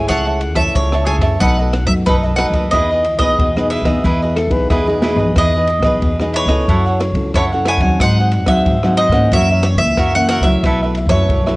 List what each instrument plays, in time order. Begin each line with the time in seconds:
Already playing: nylon-string guitar A3 E4 G#4
0.08 upright bass C#2, nylon-string guitar C#3, cavaquinho G#4 C#5 E5 A5, mandolin F#5, kick, cross-stick, ride
0.25 cavaquinho C#5 E5 A5
0.41 muted cavaquinho stroke, ride
0.53 upright bass E2, mandolin E5, cavaquinho A5, kick, cross-stick, ride
0.57 nylon-string guitar A3 E4, cavaquinho C#5 E5
0.75 upright bass C#2, nylon-string guitar C#3, mandolin C#5, kick, ride
0.92 cavaquinho C#5 E5 A5, cross-stick
1.05 nylon-string guitar A3 E4 G#4, cavaquinho G#4 C#5 E5 A5, mandolin G#5, ride
1.18 upright bass F#2, cavaquinho A5, kick, cross-stick, ride
1.22 cavaquinho C#5 E5
1.39 upright bass B1, nylon-string guitar B2 F#3 A3 D#4, cavaquinho D#4 A4 B4 D#5, mandolin F#5, kick, ride
1.58 cavaquinho A4 B4 D#5
1.73 muted cavaquinho stroke, cross-stick, ride
1.85 upright bass F#2, nylon-string guitar F#3 A3 D#4, mandolin E5, kick, ride
2.06 upright bass B1, nylon-string guitar F#2, cavaquinho D#4 A4 B4 D#5, mandolin B4, kick, cross-stick, ride
2.23 cavaquinho A4 B4 D#5
2.36 nylon-string guitar F#3 A3 D#4, cavaquinho D#4 A4 B4 D#5, mandolin F#5, cross-stick, ride
2.50 upright bass D#2, cavaquinho D#5, kick, ride
2.55 cavaquinho A4 B4
2.71 upright bass E2, nylon-string guitar E3 B3 D#4 G#4, cavaquinho E4 G#4 B4, mandolin D#5, kick, cross-stick, ride
2.75 cavaquinho D#5
2.91 cavaquinho G#4 B4 D#5
3.04 muted cavaquinho stroke, ride
3.16 upright bass B1, nylon-string guitar B3 D#4, mandolin D#5, cavaquinho D#5, kick, cross-stick, ride
3.21 nylon-string guitar G#4, cavaquinho G#4 B4
3.39 upright bass E2, nylon-string guitar B2, kick, ride
3.56 nylon-string guitar B3 D#4 G#4, cavaquinho G#4 B4 D#5, cross-stick
3.70 cavaquinho E4 G#4 B4 D#5, mandolin E5, ride
3.82 upright bass E2, nylon-string guitar B3 D#4, cavaquinho D#5, kick, cross-stick, ride
3.86 nylon-string guitar G#4, cavaquinho G#4 B4
4.04 upright bass E2, nylon-string guitar E3 B3 G#4, cavaquinho E4 G#4 B4 D#5, kick, ride
4.22 cavaquinho G#4 B4 D#5
4.36 tenor saxophone A4, muted cavaquinho stroke, cross-stick, ride
4.48 upright bass B1, nylon-string guitar B3 D#4 G#4, tenor saxophone B4, kick, ride
4.70 upright bass E2, nylon-string guitar B2, cavaquinho E4 G#4 B4 D#5, tenor saxophone G#4, kick, cross-stick, ride
4.87 nylon-string guitar B3 D#4 G#4, cavaquinho G#4 B4 D#5
5.02 cavaquinho E4 G#4 B4 D#5, snare
5.16 upright bass B1, cavaquinho G#4 B4 D#5, floor tom
5.36 upright bass E2, nylon-string guitar E3 B3 D#4 G#4, cavaquinho E4 G#4 B4 D#5, mandolin D#5, kick, cross-stick, ride
5.55 cavaquinho G#4 B4 D#5
5.67 muted cavaquinho stroke, ride
5.79 upright bass B1, nylon-string guitar B3 D#4 G#4, kick, cross-stick, ride
5.84 cavaquinho G#4 B4 D#5
6.02 upright bass E2, nylon-string guitar B2, kick, ride
6.20 nylon-string guitar B3 D#4 G#4, cavaquinho G#4 B4 D#5, cross-stick
6.33 cavaquinho E4 G#4 B4 D#5, mandolin C#5, ride
6.45 upright bass C#2, nylon-string guitar C#4 E4, cavaquinho B4 D#5, kick, cross-stick, ride
6.49 cavaquinho G#4, nylon-string guitar A4
6.68 upright bass F#2, nylon-string guitar F#3, cavaquinho E4 A4 C#5 F#5, kick, ride
6.86 cavaquinho A4 C#5 F#5
7.00 muted cavaquinho stroke, cross-stick, ride
7.12 upright bass C#2, kick, ride
7.16 nylon-string guitar C#4 E4 A4
7.34 upright bass F#2, nylon-string guitar C#3, cavaquinho E4 A4 C#5 F#5, mandolin C#5, kick, cross-stick, ride
7.53 nylon-string guitar C#4 E4 A4, cavaquinho A4 C#5 F#5
7.65 cavaquinho E4 A4 C#5 F#5, mandolin G#5, cross-stick, ride
7.77 upright bass D#2, kick, ride
7.82 nylon-string guitar F#3 C4 D#4, cavaquinho A4 C#5 F#5
8.00 upright bass G#2, nylon-string guitar G#2, cavaquinho D#4 G#4 C5 F#5, mandolin F#5, kick, cross-stick, ride
8.19 cavaquinho G#4 C5 F#5
8.31 muted cavaquinho stroke, ride
8.44 upright bass D#2, nylon-string guitar F#3 C4 D#4, kick, cross-stick, ride
8.48 cavaquinho G#4 C5 F#5, mandolin E5
8.66 upright bass G#2, nylon-string guitar D#3, kick, ride
8.83 nylon-string guitar F#3 C4 D#4, cavaquinho G#4 C5 F#5, cross-stick
8.97 cavaquinho D#4 G#4 C5 F#5, mandolin D#5, ride
9.09 upright bass G#2, nylon-string guitar E3 A#3 C#4, kick, cross-stick, ride
9.13 cavaquinho G#4 C5 F#5
9.32 upright bass F#2, nylon-string guitar F#2, cavaquinho F#4 A#4 C#5 E5, mandolin E5, kick, ride
9.51 cavaquinho A#4 C#5 E5
9.63 mandolin C#5, muted cavaquinho stroke, cross-stick, ride
9.75 upright bass C#2, nylon-string guitar E3 A#3 C#4, mandolin E5, kick, ride
9.97 upright bass F#2, nylon-string guitar C#3, cavaquinho F#4 A#4 C#5 E5, kick, cross-stick, ride
10.15 nylon-string guitar E3 A#3 C#4, cavaquinho A#4 C#5 E5, mandolin F#5
10.29 cavaquinho F#4 A#4 C#5 E5, mandolin F#5, cross-stick, ride
10.40 upright bass C#2, nylon-string guitar F#3 A3, mandolin E5, kick, ride
10.44 nylon-string guitar E4, cavaquinho A#4 C#5 E5
10.63 upright bass B1, nylon-string guitar B2, cavaquinho E4 A4 B4, kick, cross-stick, ride
10.67 cavaquinho E5
10.82 cavaquinho A4 B4 E5
10.95 muted cavaquinho stroke, ride
11.06 upright bass F#2, nylon-string guitar F#3 A3 E4, mandolin C#5, kick, cross-stick, ride
11.11 cavaquinho A4 B4 E5
11.28 upright bass B1, nylon-string guitar F#2, kick, ride
11.46 nylon-string guitar F#3 A3 E4, cavaquinho A4 B4 E5, cross-stick